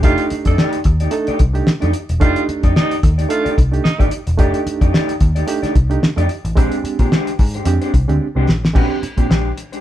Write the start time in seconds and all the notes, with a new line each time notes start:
0.03 F1 A3 D4 D#4 F4 G4 D5, kick, closed hi-hat
0.18 closed hi-hat
0.30 muted picked electric bass stroke, muted clean electric guitar stroke, closed hi-hat
0.45 F2 A3 D#4 G4 A4 D5, kick, closed hi-hat
0.58 A3 D#4 G4 D5, snare
0.73 closed hi-hat
0.84 D#2 D#4 G4, muted clean electric guitar stroke, kick, closed hi-hat
1.00 A3 D#4 G4 D5, closed hi-hat
1.11 A3 D4 D#4 A4, closed hi-hat
1.27 A3 D#4 G4 D5, muted picked electric bass stroke, closed hi-hat
1.39 C2, muted clean electric guitar stroke, kick, closed hi-hat
1.53 A3 D4 D#4 G4, muted clean electric guitar stroke, closed hi-hat
1.67 muted clean electric guitar stroke, snare
1.80 F2 A3 D4 D#4 G4 D5, closed hi-hat
1.93 D#4 G4, muted clean electric guitar stroke, closed hi-hat
2.09 E1, muted clean electric guitar stroke, closed hi-hat
2.20 F1 A3 D4 D#4 F4 G4 D5, kick, closed hi-hat
2.36 closed hi-hat
2.49 muted picked electric bass stroke, muted clean electric guitar stroke, closed hi-hat
2.63 F2 A3 D#4 G4 D5, kick, closed hi-hat
2.76 A3 D#4 G4 D5, snare
2.91 closed hi-hat
3.02 D#2 D#4 A4, kick, closed hi-hat
3.18 A3 D#4 G4 D5, closed hi-hat
3.29 A3 D4 D#4 F4 A4, muted clean electric guitar stroke, closed hi-hat
3.44 A3 D#4 G4 D5, muted picked electric bass stroke, closed hi-hat
3.56 C2, muted clean electric guitar stroke, kick, closed hi-hat
3.71 A3 D4 D#4 G4, muted clean electric guitar stroke, closed hi-hat
3.84 D#4, muted clean electric guitar stroke, muted picked electric bass stroke, snare
3.98 G#1 A3 D4 D#4 G4 D5, kick, closed hi-hat
4.11 D#4 G4, muted clean electric guitar stroke, closed hi-hat
4.27 E1, muted clean electric guitar stroke, closed hi-hat
4.38 F1 A3 D4 D#4 G4 D5, kick, closed hi-hat
4.54 closed hi-hat
4.66 muted clean electric guitar stroke, muted picked electric bass stroke, closed hi-hat
4.81 F2 A3 D#4 G4 D5, kick, closed hi-hat
4.93 A3 D#4 G4 D5, snare
5.09 closed hi-hat
5.20 D#2 D#4 G4, muted clean electric guitar stroke, kick, closed hi-hat
5.35 A3 D#4 G4 D5, closed hi-hat
5.47 A3 D4 D#4 G4, muted clean electric guitar stroke, closed hi-hat
5.62 A3 D#4 G4 D5, muted picked electric bass stroke, snare, closed hi-hat
5.75 C2, muted clean electric guitar stroke, kick, closed hi-hat
5.89 A3 D4 D#4 G4, muted clean electric guitar stroke, closed hi-hat
6.02 muted clean electric guitar stroke, snare
6.16 F2 A3 D4 D#4 G4 D5, closed hi-hat
6.28 D#4 G4, muted clean electric guitar stroke, closed hi-hat
6.45 A1, muted clean electric guitar stroke, closed hi-hat
6.55 A#1 G#3 C4 D4 G4 C5, kick, closed hi-hat
6.72 closed hi-hat
6.84 muted picked electric bass stroke, muted clean electric guitar stroke, closed hi-hat
6.99 A#2 G#3 D4 G4 C5, kick, closed hi-hat
7.12 G#3 D4 G4 C5, snare
7.27 closed hi-hat
7.38 G#2 D4 G4, muted clean electric guitar stroke, kick, open hi-hat
7.54 G#3 D4 G4 C5, closed hi-hat
7.65 F2 G#3 C4 D4 G4, muted clean electric guitar stroke, closed hi-hat
7.82 G#3 D4 G4 C5, closed hi-hat
7.94 C2, muted clean electric guitar stroke, kick, closed hi-hat
8.08 D2 G#3 C4 D4 G4, muted clean electric guitar stroke, closed hi-hat
8.20 muted clean electric guitar stroke
8.35 C2 G#3 C4 D4 G4 C5
8.47 A#1 D4 G4, muted clean electric guitar stroke, snare
8.64 A1, muted clean electric guitar stroke, snare
8.74 A#1 G#3 C4 D4 G4 C5, kick, crash
9.03 muted clean electric guitar stroke, muted picked electric bass stroke, closed hi-hat
9.17 A#2 G#3 C4 D4 G4 C5, kick, closed hi-hat
9.28 A#1 G#3 D4 G4 C5, snare
9.57 muted clean electric guitar stroke, closed hi-hat
9.72 G#3 D4 G4 C5, closed hi-hat